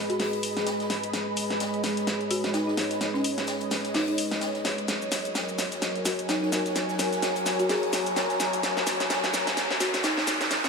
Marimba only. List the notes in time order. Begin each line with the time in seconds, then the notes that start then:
0.10 F#4
0.20 G#4
2.31 F#4
2.54 D#4
2.67 D#4
3.14 C#4
3.94 D#4
4.08 D#4
6.05 F#4
6.29 D#4
6.43 D#4
7.60 F#4
7.70 G#4
9.81 F#4
10.04 D#4
10.17 D#4
10.64 C#4